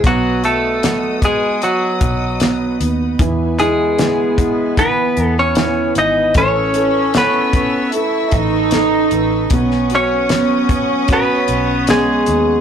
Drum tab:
HH |x-x-x-x-x-x-x-x-|x-x-x-x-x-x-x-x-|x-x-x-x-x-x-x-x-|x-x-x-x-x-x-x-x-|
SD |----o-------o---|----o-------o---|----o-------o---|-o--o-------o---|
BD |o-----o---o-----|o-----o-o-------|o-----o---o-----|o-----o-o-------|